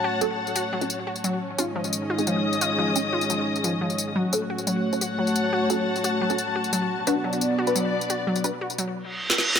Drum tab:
TB |--x--xx--xx--xx-|--x--xx--xx--xx-|--x--xx--xx--xx-|--x--xx--xx--xx-|
SD |----------------|----------------|----------------|----------------|

TB |--x--xx--xx--xx-|--x--xx--xx--xx-|-xx--xx---------|
SD |----------------|----------------|------------oo-o|